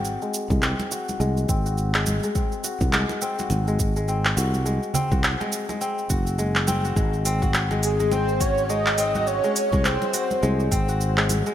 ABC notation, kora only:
X:1
M:4/4
L:1/16
Q:"Swing 16ths" 1/4=104
K:none
V:1 name="Kora"
z ^G,2 G, ^B, z ^F z G,2 B, F z G,2 G, | ^B, z ^F z ^G,2 B, F z G,2 G, B, z F z | ^G,2 ^B, ^F z G,2 G, B, z F z G,2 B, F | ^G,2 ^B, ^F z G,2 G, B, z F z G,2 B, F |
z ^G,2 G, ^B, z ^F z G,2 B, F z G,2 G, |]